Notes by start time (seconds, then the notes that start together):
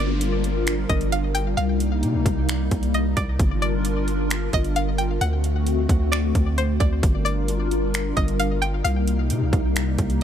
Already playing: G1 G3 D4 F4 A#4 D5, downlifter
0.21 closed hi-hat
0.44 closed hi-hat
0.67 finger snap, closed hi-hat
0.89 G1 D#5, kick, closed hi-hat
1.01 closed hi-hat
1.12 F5, closed hi-hat
1.35 G5, closed hi-hat
1.57 C2 C3 A#3 D#4 F5, closed hi-hat
1.80 closed hi-hat
2.03 C3, closed hi-hat
2.14 C2
2.26 C2, kick, closed hi-hat
2.49 finger snap, closed hi-hat
2.71 C2, kick, closed hi-hat
2.83 closed hi-hat
2.94 D#5, closed hi-hat
3.17 C2 D5, kick, closed hi-hat
3.40 G1 D4 F4 A#4, kick, closed hi-hat
3.62 D5, closed hi-hat
3.85 closed hi-hat
4.08 closed hi-hat
4.30 finger snap, closed hi-hat
4.53 G1 D#5, kick, closed hi-hat
4.64 closed hi-hat
4.76 F5, closed hi-hat
4.98 G5, closed hi-hat
5.21 D2 D3 A3 C4 F#4 F#5, closed hi-hat
5.44 closed hi-hat
5.67 closed hi-hat
5.89 D2, kick, closed hi-hat
6.12 D5, finger snap, closed hi-hat
6.35 D2, kick, closed hi-hat
6.58 C5, closed hi-hat
6.80 D2 D5, kick, closed hi-hat
7.03 G1 G3 D4 F4 A#4, kick, closed hi-hat
7.25 D5, closed hi-hat
7.48 closed hi-hat
7.71 closed hi-hat
7.94 finger snap, closed hi-hat
8.17 G1 D#5, kick, closed hi-hat
8.28 closed hi-hat
8.39 F5, closed hi-hat
8.62 G5, closed hi-hat
8.84 C2 C3 A#3 D#4 F5, closed hi-hat
9.07 closed hi-hat
9.30 C3, closed hi-hat
9.42 C2
9.53 C2, kick, closed hi-hat
9.76 finger snap, closed hi-hat
9.98 C2, kick, closed hi-hat
10.10 closed hi-hat